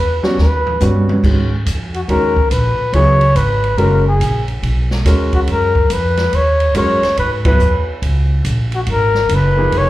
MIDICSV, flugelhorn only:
0, 0, Header, 1, 2, 480
1, 0, Start_track
1, 0, Tempo, 424328
1, 1396, Time_signature, 4, 2, 24, 8
1, 11195, End_track
2, 0, Start_track
2, 0, Title_t, "Flugelhorn"
2, 0, Program_c, 0, 56
2, 0, Note_on_c, 0, 71, 102
2, 235, Note_off_c, 0, 71, 0
2, 448, Note_on_c, 0, 71, 81
2, 1190, Note_off_c, 0, 71, 0
2, 2202, Note_on_c, 0, 66, 60
2, 2274, Note_off_c, 0, 66, 0
2, 2365, Note_on_c, 0, 70, 82
2, 2808, Note_off_c, 0, 70, 0
2, 2844, Note_on_c, 0, 71, 87
2, 3323, Note_on_c, 0, 73, 105
2, 3340, Note_off_c, 0, 71, 0
2, 3805, Note_on_c, 0, 71, 86
2, 3822, Note_off_c, 0, 73, 0
2, 4274, Note_on_c, 0, 70, 85
2, 4291, Note_off_c, 0, 71, 0
2, 4589, Note_off_c, 0, 70, 0
2, 4608, Note_on_c, 0, 68, 74
2, 5046, Note_off_c, 0, 68, 0
2, 6049, Note_on_c, 0, 66, 71
2, 6120, Note_off_c, 0, 66, 0
2, 6216, Note_on_c, 0, 70, 91
2, 6706, Note_on_c, 0, 71, 90
2, 6722, Note_off_c, 0, 70, 0
2, 7190, Note_on_c, 0, 73, 96
2, 7207, Note_off_c, 0, 71, 0
2, 7644, Note_off_c, 0, 73, 0
2, 7651, Note_on_c, 0, 73, 90
2, 8091, Note_off_c, 0, 73, 0
2, 8133, Note_on_c, 0, 71, 91
2, 8270, Note_off_c, 0, 71, 0
2, 8442, Note_on_c, 0, 71, 91
2, 8882, Note_off_c, 0, 71, 0
2, 9898, Note_on_c, 0, 66, 69
2, 9966, Note_off_c, 0, 66, 0
2, 10079, Note_on_c, 0, 70, 86
2, 10571, Note_on_c, 0, 71, 91
2, 10588, Note_off_c, 0, 70, 0
2, 11060, Note_on_c, 0, 73, 111
2, 11077, Note_off_c, 0, 71, 0
2, 11195, Note_off_c, 0, 73, 0
2, 11195, End_track
0, 0, End_of_file